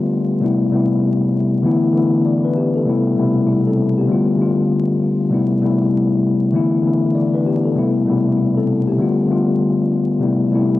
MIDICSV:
0, 0, Header, 1, 2, 480
1, 0, Start_track
1, 0, Key_signature, 0, "minor"
1, 0, Tempo, 612245
1, 330, Time_signature, 4, 2, 24, 8
1, 8465, End_track
2, 0, Start_track
2, 0, Title_t, "Tine electric piano"
2, 0, Program_c, 0, 4
2, 0, Control_c, 0, 64, 127
2, 0, Note_on_c, 0, 50, 82
2, 0, Note_on_c, 0, 55, 65
2, 0, Note_on_c, 0, 57, 74
2, 0, Note_on_c, 0, 59, 74
2, 0, Note_on_c, 0, 65, 93
2, 114, Note_off_c, 0, 50, 0
2, 119, Note_off_c, 0, 55, 0
2, 124, Note_off_c, 0, 57, 0
2, 128, Note_off_c, 0, 59, 0
2, 133, Note_off_c, 0, 65, 0
2, 312, Note_on_c, 0, 48, 81
2, 321, Note_on_c, 0, 55, 75
2, 330, Note_on_c, 0, 57, 74
2, 339, Note_on_c, 0, 59, 74
2, 341, Control_c, 0, 64, 0
2, 349, Note_on_c, 0, 64, 90
2, 500, Control_c, 0, 64, 127
2, 508, Note_off_c, 0, 48, 0
2, 512, Note_off_c, 0, 55, 0
2, 517, Note_off_c, 0, 57, 0
2, 521, Note_off_c, 0, 59, 0
2, 526, Note_off_c, 0, 64, 0
2, 555, Note_on_c, 0, 48, 88
2, 564, Note_on_c, 0, 55, 80
2, 574, Note_on_c, 0, 57, 77
2, 583, Note_on_c, 0, 59, 75
2, 592, Note_on_c, 0, 64, 94
2, 1252, Note_off_c, 0, 48, 0
2, 1257, Note_off_c, 0, 55, 0
2, 1262, Note_off_c, 0, 57, 0
2, 1266, Note_off_c, 0, 59, 0
2, 1268, Note_on_c, 0, 50, 88
2, 1271, Note_off_c, 0, 64, 0
2, 1277, Note_on_c, 0, 52, 81
2, 1286, Note_on_c, 0, 57, 80
2, 1295, Note_on_c, 0, 59, 86
2, 1300, Control_c, 0, 64, 0
2, 1304, Note_on_c, 0, 64, 98
2, 1439, Control_c, 0, 64, 127
2, 1482, Note_off_c, 0, 50, 0
2, 1487, Note_off_c, 0, 52, 0
2, 1491, Note_off_c, 0, 57, 0
2, 1496, Note_off_c, 0, 59, 0
2, 1500, Note_off_c, 0, 64, 0
2, 1511, Note_on_c, 0, 50, 81
2, 1520, Note_on_c, 0, 52, 77
2, 1530, Note_on_c, 0, 57, 73
2, 1539, Note_on_c, 0, 59, 71
2, 1548, Note_on_c, 0, 64, 88
2, 1766, Note_on_c, 0, 74, 67
2, 1775, Note_off_c, 0, 59, 0
2, 1779, Note_off_c, 0, 64, 0
2, 1909, Note_off_c, 0, 74, 0
2, 1916, Note_on_c, 0, 71, 75
2, 1921, Note_on_c, 0, 62, 59
2, 2004, Note_off_c, 0, 71, 0
2, 2007, Note_off_c, 0, 62, 0
2, 2015, Note_on_c, 0, 67, 69
2, 2020, Note_on_c, 0, 59, 62
2, 2038, Note_off_c, 0, 50, 0
2, 2043, Note_off_c, 0, 52, 0
2, 2047, Note_off_c, 0, 57, 0
2, 2153, Note_off_c, 0, 67, 0
2, 2156, Note_off_c, 0, 59, 0
2, 2159, Note_on_c, 0, 69, 64
2, 2231, Note_on_c, 0, 48, 80
2, 2239, Note_on_c, 0, 55, 75
2, 2249, Note_on_c, 0, 57, 74
2, 2258, Note_on_c, 0, 59, 72
2, 2261, Control_c, 0, 64, 0
2, 2267, Note_on_c, 0, 64, 92
2, 2386, Note_off_c, 0, 69, 0
2, 2396, Control_c, 0, 64, 127
2, 2427, Note_off_c, 0, 48, 0
2, 2431, Note_off_c, 0, 55, 0
2, 2436, Note_off_c, 0, 57, 0
2, 2441, Note_off_c, 0, 59, 0
2, 2445, Note_off_c, 0, 64, 0
2, 2470, Note_on_c, 0, 47, 69
2, 2479, Note_on_c, 0, 55, 79
2, 2489, Note_on_c, 0, 57, 77
2, 2498, Note_on_c, 0, 59, 80
2, 2507, Note_on_c, 0, 64, 93
2, 2522, Note_on_c, 0, 48, 84
2, 2543, Note_off_c, 0, 47, 0
2, 2711, Note_off_c, 0, 64, 0
2, 2716, Note_off_c, 0, 55, 0
2, 2721, Note_on_c, 0, 64, 74
2, 2725, Note_on_c, 0, 55, 63
2, 2729, Note_off_c, 0, 57, 0
2, 2734, Note_off_c, 0, 59, 0
2, 2866, Note_off_c, 0, 64, 0
2, 2868, Note_off_c, 0, 55, 0
2, 2880, Note_on_c, 0, 69, 68
2, 2884, Note_on_c, 0, 60, 60
2, 3107, Note_off_c, 0, 69, 0
2, 3110, Note_off_c, 0, 60, 0
2, 3119, Note_on_c, 0, 67, 72
2, 3124, Note_on_c, 0, 59, 57
2, 3191, Note_on_c, 0, 50, 88
2, 3195, Note_off_c, 0, 48, 0
2, 3201, Note_on_c, 0, 55, 86
2, 3209, Note_off_c, 0, 59, 0
2, 3210, Note_on_c, 0, 57, 85
2, 3219, Control_c, 0, 64, 0
2, 3219, Note_on_c, 0, 59, 77
2, 3228, Note_on_c, 0, 65, 98
2, 3347, Note_off_c, 0, 67, 0
2, 3350, Control_c, 0, 64, 127
2, 3404, Note_off_c, 0, 50, 0
2, 3409, Note_off_c, 0, 55, 0
2, 3413, Note_off_c, 0, 57, 0
2, 3418, Note_off_c, 0, 59, 0
2, 3422, Note_off_c, 0, 65, 0
2, 3426, Note_on_c, 0, 50, 84
2, 3435, Note_on_c, 0, 55, 68
2, 3444, Note_on_c, 0, 57, 74
2, 3454, Note_on_c, 0, 59, 71
2, 3463, Note_on_c, 0, 65, 95
2, 3955, Note_off_c, 0, 50, 0
2, 3960, Note_off_c, 0, 55, 0
2, 3965, Note_off_c, 0, 57, 0
2, 3969, Note_off_c, 0, 59, 0
2, 3974, Note_off_c, 0, 65, 0
2, 4151, Note_on_c, 0, 48, 84
2, 4160, Note_on_c, 0, 55, 77
2, 4170, Note_on_c, 0, 57, 76
2, 4178, Note_on_c, 0, 59, 73
2, 4179, Control_c, 0, 64, 0
2, 4188, Note_on_c, 0, 64, 90
2, 4295, Control_c, 0, 64, 127
2, 4347, Note_off_c, 0, 48, 0
2, 4352, Note_off_c, 0, 55, 0
2, 4356, Note_off_c, 0, 57, 0
2, 4361, Note_off_c, 0, 59, 0
2, 4365, Note_off_c, 0, 64, 0
2, 4397, Note_on_c, 0, 48, 84
2, 4406, Note_on_c, 0, 55, 80
2, 4415, Note_on_c, 0, 57, 81
2, 4424, Note_on_c, 0, 59, 76
2, 4434, Note_on_c, 0, 64, 92
2, 5093, Note_off_c, 0, 48, 0
2, 5098, Note_off_c, 0, 55, 0
2, 5102, Note_off_c, 0, 57, 0
2, 5107, Note_off_c, 0, 59, 0
2, 5108, Note_on_c, 0, 50, 87
2, 5112, Note_off_c, 0, 64, 0
2, 5117, Note_on_c, 0, 52, 80
2, 5126, Note_on_c, 0, 57, 81
2, 5135, Note_on_c, 0, 59, 81
2, 5140, Control_c, 0, 64, 0
2, 5145, Note_on_c, 0, 64, 99
2, 5291, Control_c, 0, 64, 127
2, 5322, Note_off_c, 0, 50, 0
2, 5327, Note_off_c, 0, 52, 0
2, 5331, Note_off_c, 0, 57, 0
2, 5336, Note_off_c, 0, 59, 0
2, 5341, Note_off_c, 0, 64, 0
2, 5351, Note_on_c, 0, 50, 79
2, 5360, Note_on_c, 0, 52, 76
2, 5370, Note_on_c, 0, 57, 70
2, 5379, Note_on_c, 0, 59, 76
2, 5388, Note_on_c, 0, 64, 85
2, 5605, Note_on_c, 0, 74, 65
2, 5614, Note_off_c, 0, 59, 0
2, 5619, Note_off_c, 0, 64, 0
2, 5748, Note_off_c, 0, 74, 0
2, 5755, Note_on_c, 0, 71, 72
2, 5760, Note_on_c, 0, 62, 55
2, 5844, Note_off_c, 0, 71, 0
2, 5847, Note_off_c, 0, 62, 0
2, 5855, Note_on_c, 0, 67, 69
2, 5860, Note_on_c, 0, 59, 62
2, 5878, Note_off_c, 0, 50, 0
2, 5883, Note_off_c, 0, 52, 0
2, 5887, Note_off_c, 0, 57, 0
2, 5994, Note_off_c, 0, 67, 0
2, 5996, Note_off_c, 0, 59, 0
2, 5998, Note_on_c, 0, 69, 60
2, 6070, Note_on_c, 0, 48, 78
2, 6079, Note_on_c, 0, 55, 73
2, 6088, Note_on_c, 0, 57, 73
2, 6097, Note_on_c, 0, 59, 75
2, 6101, Control_c, 0, 64, 0
2, 6106, Note_on_c, 0, 64, 92
2, 6226, Note_off_c, 0, 69, 0
2, 6243, Control_c, 0, 64, 127
2, 6267, Note_off_c, 0, 48, 0
2, 6271, Note_off_c, 0, 55, 0
2, 6276, Note_off_c, 0, 57, 0
2, 6280, Note_off_c, 0, 59, 0
2, 6285, Note_off_c, 0, 64, 0
2, 6310, Note_on_c, 0, 47, 68
2, 6319, Note_on_c, 0, 55, 80
2, 6328, Note_on_c, 0, 57, 76
2, 6338, Note_on_c, 0, 59, 82
2, 6347, Note_on_c, 0, 64, 90
2, 6361, Note_on_c, 0, 48, 85
2, 6383, Note_off_c, 0, 47, 0
2, 6551, Note_off_c, 0, 64, 0
2, 6556, Note_off_c, 0, 55, 0
2, 6561, Note_on_c, 0, 64, 73
2, 6566, Note_on_c, 0, 55, 62
2, 6569, Note_off_c, 0, 57, 0
2, 6574, Note_off_c, 0, 59, 0
2, 6706, Note_off_c, 0, 64, 0
2, 6709, Note_off_c, 0, 55, 0
2, 6720, Note_on_c, 0, 69, 70
2, 6725, Note_on_c, 0, 60, 61
2, 6947, Note_off_c, 0, 69, 0
2, 6950, Note_off_c, 0, 60, 0
2, 6959, Note_on_c, 0, 67, 70
2, 6964, Note_on_c, 0, 59, 58
2, 7033, Note_on_c, 0, 50, 88
2, 7035, Note_off_c, 0, 48, 0
2, 7042, Note_on_c, 0, 55, 84
2, 7051, Note_off_c, 0, 59, 0
2, 7051, Note_on_c, 0, 57, 80
2, 7060, Control_c, 0, 64, 0
2, 7060, Note_on_c, 0, 59, 78
2, 7070, Note_on_c, 0, 65, 101
2, 7187, Note_off_c, 0, 67, 0
2, 7197, Control_c, 0, 64, 127
2, 7245, Note_off_c, 0, 50, 0
2, 7249, Note_off_c, 0, 55, 0
2, 7254, Note_off_c, 0, 57, 0
2, 7258, Note_off_c, 0, 59, 0
2, 7263, Note_off_c, 0, 65, 0
2, 7267, Note_on_c, 0, 50, 83
2, 7276, Note_on_c, 0, 55, 67
2, 7285, Note_on_c, 0, 57, 72
2, 7294, Note_on_c, 0, 59, 71
2, 7304, Note_on_c, 0, 65, 93
2, 7796, Note_off_c, 0, 50, 0
2, 7800, Note_off_c, 0, 55, 0
2, 7805, Note_off_c, 0, 57, 0
2, 7809, Note_off_c, 0, 59, 0
2, 7814, Note_off_c, 0, 65, 0
2, 7991, Note_on_c, 0, 48, 85
2, 8000, Note_on_c, 0, 55, 78
2, 8010, Note_on_c, 0, 57, 78
2, 8018, Note_on_c, 0, 59, 74
2, 8021, Control_c, 0, 64, 0
2, 8028, Note_on_c, 0, 64, 88
2, 8169, Control_c, 0, 64, 127
2, 8187, Note_off_c, 0, 48, 0
2, 8192, Note_off_c, 0, 55, 0
2, 8196, Note_off_c, 0, 57, 0
2, 8201, Note_off_c, 0, 59, 0
2, 8206, Note_off_c, 0, 64, 0
2, 8237, Note_on_c, 0, 48, 85
2, 8246, Note_on_c, 0, 55, 80
2, 8255, Note_on_c, 0, 57, 82
2, 8264, Note_on_c, 0, 59, 77
2, 8273, Note_on_c, 0, 64, 94
2, 8465, Note_off_c, 0, 48, 0
2, 8465, Note_off_c, 0, 55, 0
2, 8465, Note_off_c, 0, 57, 0
2, 8465, Note_off_c, 0, 59, 0
2, 8465, Note_off_c, 0, 64, 0
2, 8465, End_track
0, 0, End_of_file